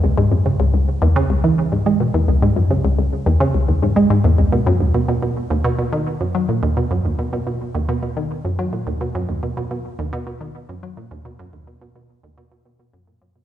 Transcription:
\new Staff \with { instrumentName = "Synth arpeggio sound" } { \clef bass \time 4/4 \key b \major \tempo 4 = 107 cis,16 gis,16 fis,16 cis16 cis,16 cis,16 r16 e,16 cis16 cis,16 e16 r16 gis,16 gis16 b,16 e,16 | cis,16 gis,16 fis,16 cis16 cis,16 cis,16 r16 e,16 cis16 cis,16 e,16 gis,16 gis16 gis,16 e,16 cis,16 | b,16 fis,16 dis,16 b,16 b,16 b,16 r16 dis,16 b,16 b,16 dis16 r16 fis,16 fis16 ais,16 dis,16 | b,16 fis,16 dis,16 b,16 b,16 b,16 r16 dis,16 b,16 b,16 dis16 r16 fis,16 fis16 ais,16 dis,16 |
b,16 fis,16 dis,16 b,16 b,16 b,16 r16 dis,16 b,16 b,16 dis16 r16 fis,16 fis16 ais,16 dis,16 | b,16 fis,16 dis,16 b,16 b,16 b,16 r16 dis,16 b,16 b,16 b,16 b,16 fis,16 ais,16 fis,16 b,16 | }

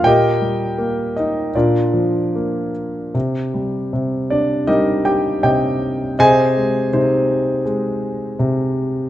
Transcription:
<<
  \new Staff \with { instrumentName = "Grand piano" } { \time 4/4 \key c \minor \tempo 4 = 80 <g' bes' ees'' g''>4. <ees' ees''>8 <d' f' bes' d''>4. r8 | r4. <d' d''>8 <ees' g' bes' ees''>8 <g' g''>8 <g' ees'' g''>4 | <aes' c'' ees'' aes''>4 <c' ees' c''>4 r2 | }
  \new Staff \with { instrumentName = "Grand piano" } { \clef bass \time 4/4 \key c \minor bes,8 g8 bes4 bes,8 f8 bes4 | c8 g8 c4 g4 c4 | c8 aes8 c4 aes4 c4 | }
>>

